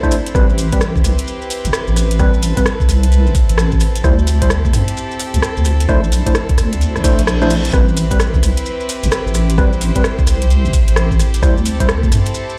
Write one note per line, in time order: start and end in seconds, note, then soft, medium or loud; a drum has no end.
0.00 0.15 A3 medium
0.00 4.00 C4 medium
0.00 0.33 D4 medium
0.00 0.15 D4 medium
0.00 4.00 E4 medium
0.00 0.15 E4 medium
0.00 0.31 A4 medium
0.00 0.15 C5 loud
0.00 kick medium
0.00 maracas soft
0.11 cross-stick soft
0.11 open hi-hat medium
0.11 maracas loud
0.26 closed hi-hat medium
0.26 maracas soft
0.35 1.02 A1 loud
0.35 0.46 G3 medium
0.35 0.46 C4 medium
0.35 2.18 G4 medium
0.35 4.00 B4 medium
0.35 0.46 B4 loud
0.35 kick loud
0.35 cross-stick soft
0.35 maracas medium
0.50 maracas soft
0.58 open hi-hat loud
0.58 maracas medium
0.72 0.79 G3 medium
0.72 0.79 C4 medium
0.72 0.79 B4 medium
0.72 kick medium
0.72 closed hi-hat medium
0.72 maracas soft
0.81 cross-stick loud
0.81 maracas medium
0.96 kick loud
0.96 maracas soft
1.04 1.16 C2 loud
1.04 cross-stick soft
1.04 open hi-hat medium
1.04 maracas medium
1.19 closed hi-hat medium
1.19 maracas soft
1.27 maracas medium
1.42 maracas soft
1.50 open hi-hat loud
1.50 maracas medium
1.65 1.72 A1 medium
1.65 closed hi-hat medium
1.65 maracas soft
1.73 cross-stick loud
1.73 maracas medium
1.87 2.53 A1 medium
1.87 maracas soft
1.96 cross-stick soft
1.96 open hi-hat medium
1.96 maracas medium
2.11 closed hi-hat medium
2.11 maracas soft
2.19 2.30 G3 medium
2.19 2.30 C4 medium
2.19 7.69 A4 medium
2.19 2.30 B4 loud
2.19 kick loud
2.19 cross-stick soft
2.19 maracas medium
2.34 maracas soft
2.43 open hi-hat loud
2.43 maracas medium
2.57 2.63 G3 medium
2.57 2.63 C4 medium
2.57 2.63 B4 medium
2.57 kick medium
2.57 closed hi-hat medium
2.57 maracas soft
2.66 cross-stick loud
2.66 maracas medium
2.80 kick loud
2.80 maracas soft
2.89 3.28 C2 loud
2.89 cross-stick soft
2.89 open hi-hat medium
2.89 maracas medium
3.03 closed hi-hat medium
3.03 maracas soft
3.12 closed hi-hat soft
3.12 maracas soft
3.26 3.33 A1 medium
3.26 maracas soft
3.35 kick loud
3.35 open hi-hat loud
3.35 maracas medium
3.49 4.02 A1 medium
3.49 closed hi-hat medium
3.49 maracas soft
3.58 cross-stick loud
3.58 maracas medium
3.72 kick medium
3.72 maracas soft
3.80 cross-stick soft
3.80 open hi-hat medium
3.80 maracas medium
3.96 closed hi-hat medium
3.96 maracas soft
4.04 4.71 D2 loud
4.04 4.15 G3 medium
4.04 11.39 C4 medium
4.04 4.15 E4 medium
4.04 12.59 E4 medium
4.04 5.87 G4 medium
4.04 4.15 C5 loud
4.04 kick loud
4.04 cross-stick medium
4.04 maracas soft
4.19 maracas soft
4.27 open hi-hat loud
4.27 maracas medium
4.42 4.48 G3 medium
4.42 4.48 E4 medium
4.42 4.48 C5 medium
4.42 kick medium
4.42 closed hi-hat medium
4.42 maracas soft
4.50 cross-stick loud
4.50 maracas medium
4.65 kick loud
4.65 maracas soft
4.73 4.85 G2 loud
4.73 cross-stick soft
4.73 open hi-hat medium
4.73 maracas medium
4.88 closed hi-hat medium
4.88 maracas soft
4.97 maracas medium
5.11 maracas soft
5.19 open hi-hat loud
5.19 maracas medium
5.34 5.41 D2 medium
5.34 closed hi-hat medium
5.34 maracas soft
5.42 cross-stick loud
5.42 maracas soft
5.57 5.86 D2 medium
5.57 maracas soft
5.65 cross-stick soft
5.65 open hi-hat medium
5.65 maracas medium
5.80 closed hi-hat medium
5.80 maracas soft
5.89 6.22 A#1 medium
5.89 6.00 A3 medium
5.89 7.71 D4 medium
5.89 6.00 D4 medium
5.89 6.00 E4 medium
5.89 6.00 C5 loud
5.89 kick loud
5.89 cross-stick medium
5.89 maracas soft
6.04 maracas soft
6.12 open hi-hat loud
6.12 maracas medium
6.26 6.33 A3 medium
6.26 6.33 D4 medium
6.26 6.33 E4 medium
6.26 6.33 C5 medium
6.26 kick medium
6.26 closed hi-hat medium
6.26 maracas soft
6.35 cross-stick loud
6.35 maracas medium
6.49 kick loud
6.49 closed hi-hat soft
6.49 maracas soft
6.58 6.97 D2 loud
6.58 cross-stick medium
6.58 open hi-hat loud
6.58 maracas medium
6.73 closed hi-hat medium
6.73 maracas soft
6.81 closed hi-hat soft
6.81 reverse cymbal medium
6.81 maracas soft
6.96 7.03 A#1 medium
6.96 cross-stick medium
6.96 maracas soft
7.04 7.20 A3 medium
7.04 7.20 D4 medium
7.04 7.20 E4 medium
7.04 7.20 C5 medium
7.04 kick loud
7.04 open hi-hat loud
7.04 maracas loud
7.19 7.71 A#1 medium
7.19 closed hi-hat medium
7.19 maracas soft
7.27 cross-stick loud
7.27 maracas soft
7.42 7.53 A3 medium
7.42 7.53 D4 medium
7.42 7.53 E4 medium
7.42 7.53 C5 loud
7.42 maracas soft
7.50 cross-stick soft
7.50 open hi-hat loud
7.50 maracas medium
7.65 closed hi-hat medium
7.65 maracas soft
7.73 8.40 A1 loud
7.73 7.84 G3 medium
7.73 7.84 C4 medium
7.73 12.59 G4 medium
7.73 9.56 B4 medium
7.73 7.84 B4 loud
7.73 kick loud
7.73 cross-stick medium
7.73 maracas medium
7.88 maracas soft
7.97 open hi-hat loud
7.97 maracas medium
8.11 8.17 G3 medium
8.11 8.17 C4 medium
8.11 8.17 B4 medium
8.11 kick medium
8.11 closed hi-hat medium
8.11 maracas soft
8.20 cross-stick loud
8.20 maracas medium
8.34 kick loud
8.34 maracas soft
8.42 8.55 C2 loud
8.42 cross-stick soft
8.42 open hi-hat loud
8.42 maracas loud
8.57 closed hi-hat medium
8.57 maracas soft
8.66 maracas medium
8.80 maracas soft
8.89 open hi-hat loud
8.89 maracas medium
9.03 9.10 A1 medium
9.03 closed hi-hat medium
9.03 maracas soft
9.12 cross-stick loud
9.12 maracas medium
9.26 9.92 A1 medium
9.26 maracas soft
9.34 cross-stick soft
9.34 open hi-hat loud
9.34 maracas loud
9.50 closed hi-hat medium
9.50 maracas soft
9.58 9.69 G3 medium
9.58 9.69 C4 medium
9.58 9.69 B4 loud
9.58 11.41 C5 medium
9.58 kick loud
9.58 cross-stick medium
9.58 maracas soft
9.73 maracas soft
9.81 open hi-hat loud
9.81 maracas medium
9.95 10.02 G3 medium
9.95 10.02 C4 medium
9.95 10.02 B4 medium
9.95 kick medium
9.95 closed hi-hat medium
9.95 maracas soft
10.04 cross-stick loud
10.04 maracas medium
10.19 kick loud
10.19 maracas soft
10.27 10.66 C2 loud
10.27 cross-stick soft
10.27 open hi-hat medium
10.27 maracas medium
10.42 closed hi-hat medium
10.42 maracas soft
10.50 closed hi-hat soft
10.50 maracas medium
10.65 10.72 A1 medium
10.65 maracas soft
10.73 kick loud
10.73 open hi-hat loud
10.73 maracas loud
10.88 11.40 A1 medium
10.88 closed hi-hat medium
10.88 maracas soft
10.96 cross-stick loud
10.96 maracas medium
11.11 kick medium
11.11 maracas soft
11.19 cross-stick soft
11.19 open hi-hat medium
11.19 maracas medium
11.34 closed hi-hat medium
11.34 maracas soft
11.42 12.09 D2 loud
11.42 11.54 G3 medium
11.42 12.59 C4 medium
11.42 11.54 E4 medium
11.42 12.59 A4 medium
11.42 11.54 C5 loud
11.42 kick loud
11.42 cross-stick medium
11.42 maracas soft
11.57 maracas soft
11.65 open hi-hat loud
11.65 maracas medium
11.80 11.87 G3 medium
11.80 11.87 E4 medium
11.80 11.87 C5 medium
11.80 kick medium
11.80 closed hi-hat medium
11.80 maracas soft
11.89 cross-stick loud
11.89 maracas medium
12.03 kick loud
12.03 maracas soft
12.12 12.24 G2 loud
12.12 cross-stick soft
12.12 open hi-hat medium
12.12 maracas loud
12.26 closed hi-hat medium
12.26 maracas soft
12.34 maracas medium
12.49 maracas soft